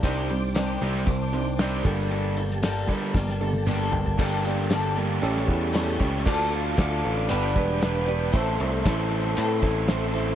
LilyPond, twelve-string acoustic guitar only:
\new Staff \with { instrumentName = "Twelve-string acoustic guitar" } { \time 4/4 \key g \minor \tempo 4 = 116 <c ees g c' d' g'>8 <g c' d' g'>8 <c ees g c' d' g'>8 <g c' d' g'>8 <g c' d' g'>8 <g c' d' g'>8 <c ees g c' d' g'>8 <g, d g bes d' a'>8~ | <g, d g bes d' a'>8 <g bes d' a'>8 <g, d g bes d' a'>8 <g bes d' a'>8 <g bes d' a'>8 <g bes d' a'>8 <g, d g bes d' a'>4 | <g, d g bes d' a'>8 <g bes d' a'>8 <g, d g bes d' a'>8 <g bes d' a'>8 <g cis' e' a'>4 <a, e g cis' e' a'>8 <g cis' e' a'>8 | \key a \minor <d f d' f' a'>8 <d' f' a'>8 <f d' f' a'>8 <d' f' a'>8 <g, d g b d' b'>4 <g b d' b'>8 <g b d' b'>8 |
<a, e a c' e' a'>8 <a c' e' a'>8 <a c' e' a'>8 <a c' e' a'>8 <a, e a c' e' a'>4 <a c' e' a'>8 <a c' e' a'>8 | }